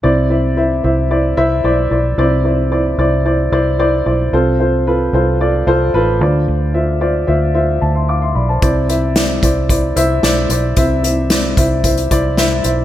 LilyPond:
<<
  \new Staff \with { instrumentName = "Upright piano" } { \time 4/4 \key c \major \tempo 4 = 112 << { r1 | r1 | r1 | r2 r8 <c'' a''>16 <e'' c'''>16 <f'' d'''>16 <e'' c'''>16 <d'' b''>16 <c'' a''>16~ |
<c'' a''>16 r2. r8. | r1 | } \\ { <e' c'' d''>8 <e' c'' e''>8 <e' c'' e''>8 <e' c'' e''>8 <e' c'' d''>8 <e' c'' e''>8 <e' c'' d''>8 <e' c'' d''>8 | <e' c'' d''>8 <e' c'' d''>8 <e' c'' d''>8 <e' c'' d''>8 <e' c'' d''>8 <e' c'' d''>8 <e' c'' d''>8 <e' c'' d''>8 | <f' a' c''>8 <f' a' c''>8 <f' a' b'>8 <f' a' c''>8 <f' a' d''>8 <f' a' c''>8 <f' a' b'>8 <f' c'' d''>8~ | <f' c'' d''>8 <f' c'' e''>8 <f' c'' d''>8 <f' c'' e''>8 <f' c'' e''>8 r4. |
<e' c'' d''>8 <e' c'' e''>8 <e' c'' d''>8 <e' c'' d''>8 <e' c'' d''>8 <e' c'' e''>8 <e' c'' d''>8 <e' c'' d''>8 | <e' c'' e''>8 <e' c'' e''>8 <e' c'' d''>8 <e' c'' e''>8 <e' c'' e''>8 <e' c'' d''>8 <e' c'' e''>8 <e' c'' e''>8 | } >> }
  \new Staff \with { instrumentName = "Upright piano" } { \clef bass \time 4/4 \key c \major c4. r2 r8 | c4. r2 r8 | c4. r2 d8~ | d4 r2. |
c4. r2 r8 | c4. r2 r8 | }
  \new Staff \with { instrumentName = "Fingered electric bass" } { \clef bass \time 4/4 \key c \major c,4. c,4 c,8 b,,8 b,,8 | c,4. c,4 c,4 b,,8 | c,4. c,4 c,8 a,,8 d,8 | d,4. d,4 d,4 b,,8 |
c,4. c,4 c,8 b,,8 b,,8 | c,4. c,4 c,4 b,,8 | }
  \new DrumStaff \with { instrumentName = "Drums" } \drummode { \time 4/4 r4 r4 r4 r4 | r4 r4 r4 r4 | r4 r4 r4 r4 | r4 r4 r4 r4 |
<hh bd>8 hh8 <hh sn>8 <hh bd>8 <hh bd>8 hh8 <hh sn>8 hh8 | <hh bd>8 hh8 <hh sn>8 <hh bd>8 <hh bd>16 hh16 <hh bd>8 <hh sn>8 hh8 | }
>>